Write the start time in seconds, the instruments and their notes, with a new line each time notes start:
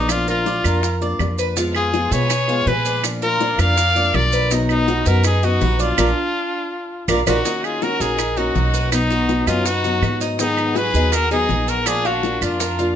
Already playing: upright bass A#1, trumpet D#4, cuban tres D5
0.09 steel-string acoustic guitar F3 A#3 D4 F4, trumpet F4, high bongo, claves, maracas
0.28 trumpet F4, cuban tres A#4, high bongo, maracas
0.45 steel-string acoustic guitar F3 A#3 D4 F4, cuban tres D5, high bongo, maracas
0.64 upright bass F2, steel-string acoustic guitar A#3 D4 F4, cuban tres A#4, high bongo, claves, maracas
0.82 muted steel-string acoustic guitar stroke, high bongo, maracas
1.01 steel-string acoustic guitar A#3 D4 F4, cuban tres D5, high bongo, maracas
1.19 upright bass F2, steel-string acoustic guitar F3 A#3 D4 F4, high bongo, low bongo, claves, maracas
1.39 cuban tres B4, maracas
1.56 steel-string acoustic guitar F3 G#3 B3 F4, cuban tres F4, high bongo, maracas
1.75 violin section F4, trumpet G#4, high bongo, claves, maracas
1.92 steel-string acoustic guitar F3 G#3 B3 F4, cuban tres G#4, high bongo, maracas
2.11 upright bass B2, steel-string acoustic guitar G#3 B3 F4, violin section G#4, cuban tres B4, trumpet C#5, high bongo, maracas
2.30 muted steel-string acoustic guitar stroke, high bongo, claves, maracas
2.48 steel-string acoustic guitar G#3 B3 F4, cuban tres F5, high bongo, maracas
2.66 upright bass A#2, steel-string acoustic guitar F3 G#3 F4, violin section G#4, cuban tres B4, trumpet B4, high bongo, low bongo, maracas
2.85 cuban tres D5, maracas
3.03 steel-string acoustic guitar F3 A#3 D4 F4, high bongo, claves, maracas
3.22 violin section F4, cuban tres A#4, trumpet A#4, high bongo, maracas
3.40 steel-string acoustic guitar F3 A#3 D4 F4, cuban tres D5, high bongo, maracas
3.58 upright bass F2, steel-string acoustic guitar A#3 D4 F4, cuban tres A#4, violin section D5, trumpet F5, high bongo, claves, maracas
3.78 high bongo, maracas
3.95 steel-string acoustic guitar A#3 D4 F4, cuban tres D5, high bongo, maracas
4.13 upright bass B1, steel-string acoustic guitar F3 A#3 D4 F4, violin section A#4, trumpet D5, high bongo, low bongo, claves, maracas
4.33 cuban tres B4, maracas
4.50 steel-string acoustic guitar B2 F#3 B3 D#4 F#4, cuban tres D#4, high bongo, maracas
4.69 violin section B3, trumpet D#4, high bongo, claves, maracas
4.87 steel-string acoustic guitar F#3, cuban tres F#4, high bongo, maracas
5.05 upright bass F#2, steel-string acoustic guitar F#3 B3 D#4 F#4, violin section F#4, trumpet A#4, cuban tres B4, high bongo, maracas
5.24 violin section D#4, trumpet G#4, muted steel-string acoustic guitar stroke, high bongo, claves, maracas
5.43 steel-string acoustic guitar F#3 B3 D#4 F#4, violin section D#4, trumpet F#4, cuban tres D#5, high bongo, maracas
5.61 upright bass A#1, steel-string acoustic guitar F#3 B3 D#4 F#4, cuban tres B4, high bongo, low bongo, maracas
5.79 violin section D4, trumpet F4, cuban tres D5, maracas
5.98 upright bass A#1, steel-string acoustic guitar A#3 D4 F4, cuban tres F4 A#4 D5, low bongo, claves, maracas
7.08 upright bass A#1, steel-string acoustic guitar A#3 D4 F4, cuban tres F4 A#4 D5, low bongo, claves, maracas
7.27 upright bass A#1, steel-string acoustic guitar A#3 D4 F4, violin section D#4, cuban tres F4 A#4 D5, trumpet F#4, low bongo, claves, maracas
7.44 steel-string acoustic guitar D#3 A#3 C#4 F#4, cuban tres D#4, high bongo, maracas
7.64 violin section F4, trumpet G#4, high bongo, claves, maracas
7.81 steel-string acoustic guitar D#3 A#3 C#4 F#4, cuban tres F#4, violin section F#4, trumpet A#4, high bongo, maracas
7.99 upright bass A#1, steel-string acoustic guitar A#3 C#4 F#4, violin section D#4, trumpet G#4, cuban tres A#4, high bongo, maracas
8.18 muted steel-string acoustic guitar stroke, high bongo, claves, maracas
8.37 steel-string acoustic guitar A#3 C#4 F#4, violin section D#4, cuban tres D#4, trumpet F#4, high bongo, maracas
8.55 upright bass B1, steel-string acoustic guitar A#3 C#4 F#4, high bongo, low bongo, maracas
8.74 cuban tres B4, maracas
8.92 steel-string acoustic guitar B2 F#3 B3 D#4 F#4, violin section B3, cuban tres D#4, trumpet D#4, high bongo, claves, maracas
9.10 cuban tres F#4, high bongo, maracas
9.29 steel-string acoustic guitar F#3 B3 D#4 F#4, high bongo, maracas
9.47 upright bass F#2, steel-string acoustic guitar F#3 B3 D#4 F#4, violin section C#4, trumpet F4, cuban tres D#5, high bongo, claves, maracas
9.66 violin section D#4, trumpet F#4, cuban tres B4, muted steel-string acoustic guitar stroke, high bongo, maracas
9.84 steel-string acoustic guitar F#3 B3 D#4 F#4, cuban tres F#4, high bongo, maracas
10.02 upright bass G#2, steel-string acoustic guitar F#3 B3 D#4 F#4, high bongo, low bongo, claves, maracas
10.21 cuban tres D#4, maracas
10.39 steel-string acoustic guitar D#3 F#3 B3 D#4 G#4, violin section B3, trumpet D#4, cuban tres D#4, high bongo, maracas
10.57 high bongo, claves, maracas
10.76 steel-string acoustic guitar F#3 B3 D#4 G#4, cuban tres F#4, violin section G#4, trumpet B4, high bongo, maracas
10.94 upright bass D#2, steel-string acoustic guitar F#3 B3 D#4 G#4, cuban tres G#4, high bongo, maracas
11.12 violin section F#4, trumpet A#4, muted steel-string acoustic guitar stroke, high bongo, claves, maracas
11.31 steel-string acoustic guitar F#3 B3 D#4 G#4, cuban tres D#4, violin section D#4, trumpet G#4, high bongo, maracas
11.49 upright bass A#1, steel-string acoustic guitar F#3 B3 D#4, high bongo, low bongo, maracas
11.68 violin section F#4, cuban tres A#4, trumpet A#4, maracas
11.86 steel-string acoustic guitar F3 A#3 D4 F4, cuban tres D4, violin section F4, trumpet G#4, high bongo, claves, maracas
12.05 violin section D4, trumpet F#4, cuban tres F5, high bongo, maracas
12.23 steel-string acoustic guitar F3 A#3 D4 F4, high bongo, maracas
12.41 upright bass F2, steel-string acoustic guitar A#3 D4 F4, violin section D4, trumpet F4, cuban tres D5, high bongo, claves, maracas
12.60 cuban tres A#4, muted steel-string acoustic guitar stroke, high bongo, maracas
12.78 steel-string acoustic guitar A#3 D4 F4, cuban tres F4, high bongo, maracas